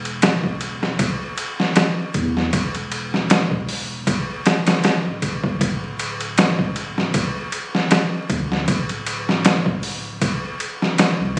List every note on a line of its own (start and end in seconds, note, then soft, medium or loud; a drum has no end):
0.00 0.96 E1 loud
0.05 ride soft
0.22 snare loud
0.22 ride medium
0.44 kick medium
0.61 ride medium
0.83 snare soft
0.99 kick loud
0.99 ride medium
1.38 ride medium
1.60 snare soft
1.76 snare medium
1.76 ride medium
2.14 2.49 E2 medium
2.14 kick medium
2.14 ride medium
2.37 snare soft
2.53 4.03 E1 loud
2.53 kick loud
2.53 ride medium
2.75 ride soft
2.92 ride medium
3.14 snare soft
3.30 snare loud
3.30 ride medium
3.51 kick medium
3.69 open hi-hat medium
4.07 kick loud
4.07 ride medium
4.46 snare medium
4.46 ride medium
4.66 snare medium
4.66 ride medium
4.84 snare loud
4.84 ride medium
5.06 5.58 D1 medium
5.22 kick medium
5.22 ride medium
5.44 kick medium
5.61 7.11 D1 loud
5.61 kick loud
5.61 ride medium
5.99 ride medium
6.20 ride soft
6.38 snare loud
6.38 ride medium
6.59 kick medium
6.76 ride medium
6.98 snare soft
7.14 kick loud
7.14 ride medium
7.52 ride medium
7.75 snare soft
7.91 snare loud
7.91 ride medium
8.30 8.64 D2 medium
8.30 kick medium
8.30 ride medium
8.52 snare soft
8.68 10.19 D1 loud
8.68 kick loud
8.68 ride medium
8.89 ride soft
9.07 ride medium
9.29 snare soft
9.45 snare loud
9.45 ride medium
9.66 kick medium
9.83 open hi-hat medium
10.21 kick loud
10.21 ride medium
10.60 ride medium
10.82 snare soft
10.98 snare loud
10.98 ride medium
11.20 11.39 C2 medium